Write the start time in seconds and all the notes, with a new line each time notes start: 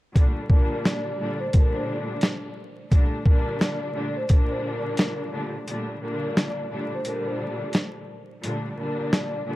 0.14 A#2 D3 G3 A3 D4, kick, closed hi-hat
0.49 A#2 D3 G3 A#3 D4 A#4, kick
0.85 D5, snare, closed hi-hat
1.18 A#2 D3 G3 A3 D4
1.40 C5
1.53 A#2 D3 G3 A3 D4 A#4, kick, closed hi-hat
1.75 C5
1.88 D5
2.21 snare, closed hi-hat
2.90 A#2 D3 G3 A3 D4, kick, closed hi-hat
3.24 A#2 D3 G3 A#3 D4 A#4, kick
3.60 D5, snare, closed hi-hat
3.93 A#2 D3 G3 A3 D4
4.17 C5
4.28 A#2 D3 G3 A#3 D4, kick, closed hi-hat
4.51 C5
4.97 snare, closed hi-hat
5.31 A#2 D3 G3 A3 D4
5.67 A#2 D3 G3 A3 D4, closed hi-hat
6.00 A#2 D3 G3 A#3 D4 A#4
6.36 D5, snare, closed hi-hat
6.70 A#2 D3 G3 A3 D4
6.94 C5
7.04 A#2 D3 G3 A3 D4 A#4, closed hi-hat
7.26 C5
7.39 D5
7.73 snare, closed hi-hat
8.42 A#2 D3 G3 A3 D4, closed hi-hat
8.76 A#2 D3 G3 A#3 D4 A#4
9.12 D5, snare, closed hi-hat
9.45 A#2 D3 G3 A3 D4